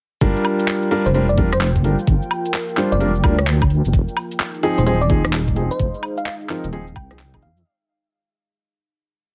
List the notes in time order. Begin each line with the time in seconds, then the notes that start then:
0.21 G1 G3 D4 F4 A#4, kick, closed hi-hat, cabasa
0.36 A#4, cabasa
0.45 G5, open hi-hat, high woodblock
0.59 closed hi-hat, cabasa
0.68 clap, cabasa
0.83 closed hi-hat, cabasa
0.91 G3 D4 F4 A#4, open hi-hat
1.06 F1 C5, closed hi-hat, cabasa
1.14 G3 D4 F4 A#4 C5, closed hi-hat, cabasa
1.29 D5, cabasa
1.38 G3 D4 F4 A#4, kick, open hi-hat
1.52 C5, cross-stick, open hi-hat, cabasa
1.61 clap, cabasa
1.76 kick, closed hi-hat, cabasa
1.84 G1 G3 D4 F4 A#4, open hi-hat
1.99 cabasa
2.07 G1, kick, closed hi-hat, cabasa
2.22 cabasa
2.31 open hi-hat, high woodblock
2.46 closed hi-hat, cabasa
2.54 clap, cabasa
2.69 closed hi-hat, cabasa
2.77 G3 D4 F4 C5, clap, open hi-hat
2.92 F1 D5, closed hi-hat, cabasa
3.00 G3 D4 F4 A#4, closed hi-hat, cabasa
3.15 cabasa
3.24 D2 G3 D4 F4 A#4, kick, open hi-hat, high woodblock
3.39 cross-stick, cabasa
3.47 clap, cabasa
3.62 kick, closed hi-hat, cabasa, high woodblock
3.70 open hi-hat
3.85 G1, open hi-hat, cabasa
3.93 F1 D#4, kick, closed hi-hat, cabasa
4.08 cabasa
4.17 G#4, open hi-hat, high woodblock
4.31 closed hi-hat, cabasa
4.40 clap, cabasa
4.55 closed hi-hat, cabasa
4.63 F3 C4 D#4 G#4, open hi-hat
4.75 D#1 C5 F5, closed hi-hat, cabasa
4.86 F3 C4 D#4 G#4 C5, closed hi-hat, cabasa
5.01 D5, cabasa
5.10 F3 C4 D#4 G#4, kick, open hi-hat
5.25 cross-stick, open hi-hat, cabasa
5.33 clap, cabasa
5.48 kick, closed hi-hat, cabasa
5.56 F1 F3 C4 D#4 G#4, open hi-hat
5.71 C5, cabasa
5.80 F1, kick, closed hi-hat, cabasa
5.94 cabasa
6.03 open hi-hat, high woodblock
6.18 F5, closed hi-hat, cabasa
6.26 F5, clap, cabasa
6.41 closed hi-hat, cabasa
6.49 F3 C4 D#4 A#4, clap, open hi-hat
6.64 D#1, closed hi-hat, cabasa
6.73 F3 C4 D#4 G#4, closed hi-hat, cabasa
6.87 cabasa
6.96 C2 G5, kick, open hi-hat, high woodblock
7.11 F3 C4 D#4 G#4, cross-stick, cabasa
7.19 clap, cabasa
7.34 F1 F3 C4 D#4 G#4, kick, closed hi-hat, cabasa, high woodblock
7.42 F2 F5, open hi-hat
7.57 open hi-hat, cabasa